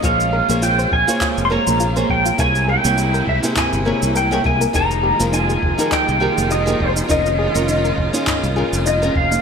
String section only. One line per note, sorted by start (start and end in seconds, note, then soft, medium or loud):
0.00 2.36 C3 medium
0.00 9.42 G#3 medium
0.00 9.42 A#3 medium
0.00 2.35 F4 medium
2.39 4.72 C3 medium
2.39 4.72 E4 medium
4.75 9.41 D#3 medium
4.75 9.42 F4 medium
7.09 9.42 C#3 medium